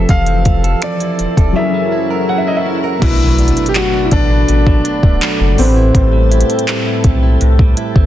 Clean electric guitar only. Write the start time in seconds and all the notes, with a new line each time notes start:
Already playing: E4 A4
0.09 F3
0.27 C4
0.64 A4
0.82 C4
1.00 E4
1.19 C4
1.37 A4
1.56 F#3
1.74 C#4
1.92 E4
2.10 A#4
2.29 C#4
2.47 E4
2.66 C#4
2.84 A#4
3.02 B2
3.20 F#3
3.39 D4
3.57 A3
3.75 F#3
3.94 D4
4.12 A3
4.31 D4
4.48 B2
4.67 F#3
4.85 D4
5.03 A3
5.21 F#3
5.40 D4
5.58 A2
5.76 E4
5.95 A2
6.13 G3
6.31 E4
6.50 C4
6.68 G3
6.86 E4
7.04 C4
7.23 E4
7.41 A2
7.59 G3
7.77 E4
7.96 C4